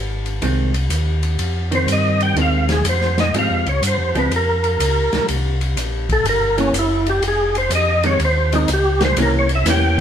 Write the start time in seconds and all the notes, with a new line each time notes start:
Already playing: G#1
0.26 ride
0.42 C2 D#3 G#3 C4, ride
0.74 ride
0.90 D#2, hi-hat pedal, ride
1.23 ride
1.39 F2, ride
1.71 D#3 C4 C5, ride
1.87 G2, hi-hat pedal, ride
1.92 D#5
2.20 G5, ride
2.36 D#2 D#3 G#3 C4, ride
2.41 F5
2.69 G#4, snare, ride
2.84 F2, hi-hat pedal, ride
2.89 C5
3.01 snare
3.18 D#5, snare, ride
3.33 G#2 F3 G#3 C4, ride
3.39 F5
3.49 F2
3.66 C#2 C#5, ride
3.82 G2, hi-hat pedal, ride
3.87 C5
3.99 F2
4.15 C#2 F3 G#3 C4 B4, ride
4.30 F2, ride
4.36 A#4
4.64 ride
4.80 C#2, hi-hat pedal, ride
5.13 C#2, snare, ride
5.28 C2, ride
5.61 ride
5.76 A#1, hi-hat pedal, ride
6.09 A4, kick, ride
6.24 G1, ride
6.29 A#4
6.58 E3 A#3 C#4, ride
6.73 F#1, hi-hat pedal, ride
6.79 E4
7.06 G4, ride
7.22 F1, ride
7.28 G#4
7.55 C5, ride
7.70 F2, hi-hat pedal, ride
7.75 D#5
8.03 D#3 G#3 C4 C#5, ride
8.19 D#2, ride
8.25 C5
8.52 D#3 G#3 C4 D#4, ride
8.68 C#2, hi-hat pedal, ride
8.73 G4
9.01 snare, ride
9.05 C5
9.17 C2 E3 A#3 C#4, ride
9.22 A#4
9.39 C#5
9.49 ride
9.55 E5
9.65 E2 E3 A#3 C#4, snare, hi-hat pedal, ride
9.70 G5